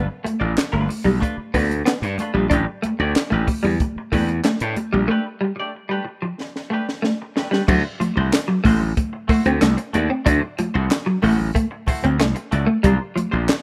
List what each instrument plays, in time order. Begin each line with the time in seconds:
0.08 muted clean electric guitar stroke
0.24 clean electric guitar A3, muted clean electric guitar stroke, closed hi-hat, muted conga, high conga
0.40 slap bass A1, clean electric guitar A3 D4 F4 D5, muted clean electric guitar stroke
0.57 muted clean electric guitar stroke, muted slap bass stroke, snare, clap, closed hi-hat, muted conga
0.72 slap bass G1, clean electric guitar A3 D4 F4 B4
0.89 muted clean electric guitar stroke, open hi-hat, high conga
1.04 slap bass B1, clean electric guitar G3, muted clean electric guitar stroke, low conga
1.20 clean electric guitar A3 D4 F4 B4, kick, closed hi-hat, muted conga, high conga
1.38 muted slap bass stroke, muted clean electric guitar stroke
1.54 slap bass D2, clean electric guitar A3 B3 D4 F4 B4, kick, open hi-hat
1.70 muted clean electric guitar stroke, closed hi-hat, high conga
1.85 clean electric guitar B3, muted clean electric guitar stroke, snare, clap, closed hi-hat
2.02 slap bass G2, muted clean electric guitar stroke, closed hi-hat
2.18 clean electric guitar A3 D4 F4, muted clean electric guitar stroke, closed hi-hat, muted conga, high conga
2.22 clean electric guitar B4
2.34 slap bass A#1, clean electric guitar G3 D4 F4 B4
2.38 clean electric guitar A3
2.50 slap bass A1, clean electric guitar A3 D4 G4 B4, kick, closed hi-hat, low conga
2.68 muted clean electric guitar stroke
2.82 clean electric guitar A3, muted clean electric guitar stroke, closed hi-hat, muted conga, high conga
2.99 slap bass D2, clean electric guitar A3 D4 G4 D5, muted clean electric guitar stroke
3.16 muted slap bass stroke, muted clean electric guitar stroke, snare, clap, closed hi-hat
3.30 slap bass A1, clean electric guitar A3 G4 B4
3.35 clean electric guitar A3 D4
3.48 muted clean electric guitar stroke, kick, open hi-hat, high conga
3.63 slap bass E2, clean electric guitar G3, muted clean electric guitar stroke, low conga
3.80 muted clean electric guitar stroke, kick, closed hi-hat, muted conga, high conga
3.96 muted slap bass stroke, muted clean electric guitar stroke
4.12 slap bass E2, clean electric guitar A3 D4 G4 B4, kick, open hi-hat
4.28 muted clean electric guitar stroke, closed hi-hat, high conga
4.44 clean electric guitar A3, muted clean electric guitar stroke, snare, clap, closed hi-hat, muted conga
4.60 slap bass A2, clean electric guitar A3 D4 G4 B4, closed hi-hat
4.76 muted clean electric guitar stroke, closed hi-hat, muted conga, high conga
4.93 slap bass A#1, clean electric guitar G3, muted clean electric guitar stroke
5.08 clean electric guitar A3 D4 G4 B4
5.27 muted clean electric guitar stroke
5.41 clean electric guitar G3, muted clean electric guitar stroke
5.56 clean electric guitar D5, muted clean electric guitar stroke
5.60 clean electric guitar A3 D4 G4
5.75 muted clean electric guitar stroke
5.89 clean electric guitar G3 A3 D4 G4 B4
6.07 muted clean electric guitar stroke
6.22 clean electric guitar F3, muted clean electric guitar stroke
6.40 muted clean electric guitar stroke, snare
6.56 muted clean electric guitar stroke, snare
6.70 clean electric guitar A3 D4 G4 B4
6.89 muted clean electric guitar stroke, snare
7.02 clean electric guitar A3, muted clean electric guitar stroke, snare
7.22 muted clean electric guitar stroke
7.36 clean electric guitar A3 D4 G4 B4, muted clean electric guitar stroke, snare
7.51 clean electric guitar G3 A3 D4 G4 B4, snare
7.68 slap bass D2, clean electric guitar F#3 A3 E4 F#4 C5, kick, crash, muted conga, low conga
8.00 clean electric guitar F3, muted clean electric guitar stroke, closed hi-hat, muted conga, high conga
8.16 slap bass C2, clean electric guitar A3 E4 F#4 C5, muted clean electric guitar stroke
8.33 muted clean electric guitar stroke, snare, clap, closed hi-hat, muted conga
8.48 clean electric guitar F#3, muted clean electric guitar stroke
8.64 slap bass A1, clean electric guitar A3 E4 F#4 C5, kick, open hi-hat, muted conga, high conga
8.81 muted clean electric guitar stroke, low conga
8.97 muted clean electric guitar stroke, kick, closed hi-hat, high conga
9.13 muted clean electric guitar stroke
9.28 clean electric guitar A3 E4 F#4 C5, muted slap bass stroke, kick, open hi-hat, muted conga
9.45 slap bass D2, clean electric guitar C4, muted clean electric guitar stroke, closed hi-hat, high conga
9.61 slap bass C2, clean electric guitar A3, muted clean electric guitar stroke, snare, clap, closed hi-hat
9.77 muted clean electric guitar stroke, closed hi-hat
9.93 slap bass D#2, clean electric guitar A3 E4 F#4 D5, closed hi-hat, muted conga, high conga
10.10 clean electric guitar C4, muted clean electric guitar stroke
10.25 slap bass D2, clean electric guitar A3 D4 E4 F#4 C5, kick, closed hi-hat, muted conga, low conga
10.42 muted clean electric guitar stroke
10.59 clean electric guitar F3, muted clean electric guitar stroke, closed hi-hat, muted conga, high conga
10.74 slap bass C2, clean electric guitar A3 E4 F#4 C5
10.91 muted clean electric guitar stroke, snare, clap, closed hi-hat, muted conga
11.06 clean electric guitar F#3, muted clean electric guitar stroke
11.22 slap bass A1, clean electric guitar A3 E4 F#4 C5, open hi-hat, high conga
11.38 muted clean electric guitar stroke, low conga
11.54 clean electric guitar A3, kick, closed hi-hat, muted conga, high conga
11.71 muted clean electric guitar stroke
11.87 clean electric guitar A3 E4 F#4 C5, muted slap bass stroke, muted clean electric guitar stroke, kick, open hi-hat, muted conga
12.03 slap bass D2, clean electric guitar C4, muted clean electric guitar stroke, closed hi-hat, high conga
12.19 slap bass C2, clean electric guitar A3, muted clean electric guitar stroke, snare, clap, closed hi-hat
12.35 muted clean electric guitar stroke, closed hi-hat
12.51 slap bass C#2, clean electric guitar A3 E4 F#4 D5, closed hi-hat, high conga
12.66 clean electric guitar A3, muted clean electric guitar stroke
12.83 slap bass C2, clean electric guitar G3 A#3 D4 F4 C5, kick, closed hi-hat, muted conga, low conga
13.16 clean electric guitar F3, muted clean electric guitar stroke, closed hi-hat, muted conga, high conga
13.31 slap bass A#1, clean electric guitar A#3 D4 F4 C5, muted clean electric guitar stroke
13.47 muted clean electric guitar stroke, snare, clap, closed hi-hat, muted conga